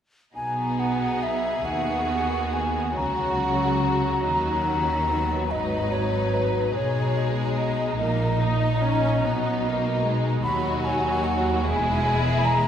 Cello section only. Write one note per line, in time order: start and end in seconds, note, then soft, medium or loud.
0.35 1.63 B2 soft
1.67 2.94 D#3 soft
2.97 4.23 C#3 soft
4.23 5.51 D#3 soft
5.52 6.75 G#2 soft
6.75 7.97 B2 soft
7.99 9.19 A#2 soft
9.21 10.44 B2 soft
10.44 11.63 D#2 soft
11.65 12.68 E2 soft